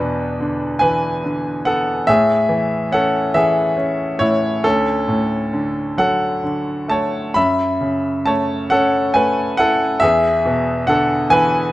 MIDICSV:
0, 0, Header, 1, 2, 480
1, 0, Start_track
1, 0, Tempo, 840336
1, 1191, Time_signature, 6, 3, 24, 8
1, 2156, Tempo, 884956
1, 3116, Tempo, 904977
1, 5036, Tempo, 859599
1, 6464, End_track
2, 0, Start_track
2, 0, Title_t, "Grand piano"
2, 0, Program_c, 0, 0
2, 0, Control_c, 0, 64, 127
2, 0, Note_on_c, 0, 40, 51
2, 0, Note_on_c, 0, 47, 45
2, 0, Note_on_c, 0, 62, 59
2, 0, Note_on_c, 0, 71, 74
2, 230, Note_on_c, 0, 50, 47
2, 449, Note_off_c, 0, 62, 0
2, 453, Note_on_c, 0, 80, 81
2, 455, Note_off_c, 0, 71, 0
2, 463, Note_on_c, 0, 71, 63
2, 472, Note_on_c, 0, 52, 47
2, 701, Note_off_c, 0, 50, 0
2, 710, Note_on_c, 0, 50, 44
2, 923, Note_off_c, 0, 71, 0
2, 925, Note_off_c, 0, 47, 0
2, 944, Note_on_c, 0, 78, 80
2, 946, Note_on_c, 0, 59, 46
2, 953, Note_on_c, 0, 69, 61
2, 955, Note_off_c, 0, 80, 0
2, 1168, Note_off_c, 0, 40, 0
2, 1170, Note_off_c, 0, 52, 0
2, 1171, Note_off_c, 0, 78, 0
2, 1176, Note_off_c, 0, 50, 0
2, 1176, Note_off_c, 0, 69, 0
2, 1182, Note_off_c, 0, 59, 0
2, 1183, Note_on_c, 0, 76, 92
2, 1188, Note_on_c, 0, 45, 59
2, 1192, Note_on_c, 0, 68, 65
2, 1198, Control_c, 0, 64, 0
2, 1296, Control_c, 0, 64, 127
2, 1422, Note_on_c, 0, 52, 51
2, 1651, Note_off_c, 0, 68, 0
2, 1666, Note_on_c, 0, 61, 51
2, 1671, Note_on_c, 0, 78, 76
2, 1681, Note_on_c, 0, 69, 63
2, 1684, Note_off_c, 0, 76, 0
2, 1901, Note_off_c, 0, 52, 0
2, 1901, Note_off_c, 0, 69, 0
2, 1910, Note_on_c, 0, 52, 50
2, 1910, Note_on_c, 0, 76, 80
2, 1918, Note_on_c, 0, 68, 66
2, 1919, Note_off_c, 0, 78, 0
2, 2144, Note_off_c, 0, 61, 0
2, 2153, Note_on_c, 0, 61, 46
2, 2367, Note_off_c, 0, 76, 0
2, 2371, Note_off_c, 0, 68, 0
2, 2377, Note_off_c, 0, 45, 0
2, 2382, Note_on_c, 0, 73, 79
2, 2385, Note_on_c, 0, 45, 44
2, 2393, Note_on_c, 0, 64, 58
2, 2606, Note_off_c, 0, 52, 0
2, 2614, Note_off_c, 0, 61, 0
2, 2614, Note_off_c, 0, 64, 0
2, 2619, Note_off_c, 0, 45, 0
2, 2622, Note_on_c, 0, 38, 52
2, 2626, Note_on_c, 0, 69, 83
2, 2632, Note_off_c, 0, 73, 0
2, 2635, Note_on_c, 0, 61, 59
2, 2637, Control_c, 0, 64, 0
2, 2731, Control_c, 0, 64, 127
2, 2864, Note_on_c, 0, 45, 45
2, 3109, Note_on_c, 0, 50, 47
2, 3332, Note_off_c, 0, 69, 0
2, 3336, Note_off_c, 0, 61, 0
2, 3344, Note_on_c, 0, 54, 46
2, 3348, Note_on_c, 0, 78, 82
2, 3354, Note_on_c, 0, 69, 57
2, 3581, Note_off_c, 0, 50, 0
2, 3589, Note_on_c, 0, 50, 41
2, 3814, Note_off_c, 0, 45, 0
2, 3814, Note_off_c, 0, 78, 0
2, 3817, Note_off_c, 0, 69, 0
2, 3826, Note_on_c, 0, 57, 40
2, 3832, Note_on_c, 0, 81, 73
2, 3841, Note_on_c, 0, 73, 58
2, 4055, Note_off_c, 0, 54, 0
2, 4057, Note_off_c, 0, 38, 0
2, 4062, Note_off_c, 0, 81, 0
2, 4064, Note_off_c, 0, 50, 0
2, 4066, Note_off_c, 0, 73, 0
2, 4068, Note_off_c, 0, 57, 0
2, 4070, Note_on_c, 0, 83, 80
2, 4077, Note_on_c, 0, 42, 48
2, 4080, Note_on_c, 0, 76, 66
2, 4090, Control_c, 0, 64, 0
2, 4189, Control_c, 0, 64, 127
2, 4317, Note_on_c, 0, 49, 44
2, 4542, Note_off_c, 0, 76, 0
2, 4554, Note_on_c, 0, 81, 76
2, 4561, Note_on_c, 0, 57, 44
2, 4563, Note_on_c, 0, 73, 58
2, 4573, Note_off_c, 0, 83, 0
2, 4784, Note_off_c, 0, 73, 0
2, 4790, Note_on_c, 0, 78, 84
2, 4799, Note_on_c, 0, 69, 64
2, 4801, Note_on_c, 0, 61, 47
2, 4804, Note_off_c, 0, 81, 0
2, 5013, Note_off_c, 0, 78, 0
2, 5018, Note_off_c, 0, 69, 0
2, 5021, Note_off_c, 0, 57, 0
2, 5022, Note_on_c, 0, 80, 81
2, 5029, Note_on_c, 0, 57, 44
2, 5032, Note_on_c, 0, 71, 63
2, 5252, Note_off_c, 0, 49, 0
2, 5254, Note_off_c, 0, 80, 0
2, 5260, Note_off_c, 0, 71, 0
2, 5265, Note_on_c, 0, 78, 85
2, 5273, Note_on_c, 0, 64, 50
2, 5280, Note_on_c, 0, 69, 65
2, 5494, Note_off_c, 0, 42, 0
2, 5495, Note_off_c, 0, 78, 0
2, 5497, Note_off_c, 0, 61, 0
2, 5501, Note_off_c, 0, 57, 0
2, 5501, Note_on_c, 0, 76, 95
2, 5503, Note_off_c, 0, 69, 0
2, 5509, Note_off_c, 0, 64, 0
2, 5513, Note_on_c, 0, 68, 72
2, 5518, Note_on_c, 0, 40, 57
2, 5527, Control_c, 0, 64, 0
2, 5621, Control_c, 0, 64, 127
2, 5756, Note_on_c, 0, 47, 53
2, 5972, Note_off_c, 0, 68, 0
2, 5988, Note_on_c, 0, 78, 84
2, 5993, Note_on_c, 0, 50, 56
2, 6002, Note_on_c, 0, 69, 67
2, 6003, Note_off_c, 0, 76, 0
2, 6223, Note_off_c, 0, 69, 0
2, 6230, Note_on_c, 0, 80, 101
2, 6232, Note_on_c, 0, 52, 55
2, 6240, Note_off_c, 0, 78, 0
2, 6242, Note_on_c, 0, 71, 75
2, 6464, Note_off_c, 0, 40, 0
2, 6464, Note_off_c, 0, 47, 0
2, 6464, Note_off_c, 0, 50, 0
2, 6464, Note_off_c, 0, 52, 0
2, 6464, Note_off_c, 0, 71, 0
2, 6464, Note_off_c, 0, 80, 0
2, 6464, End_track
0, 0, End_of_file